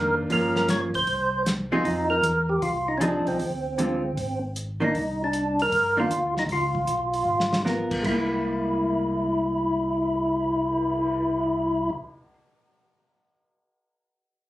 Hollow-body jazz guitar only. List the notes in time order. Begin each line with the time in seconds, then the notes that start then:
Already playing: D#3 A#3 D4
0.30 F3 A#3 C#4
1.72 F3 C4 D#4 G#4
3.00 F3 C4 D#4 G#4
3.78 D3 G#3 C4 F4
4.80 D#3 A#3 D4
5.97 D#3 A#3 D4
7.65 B3 F4 A#4
8.02 G#3
8.09 A#3
8.14 E4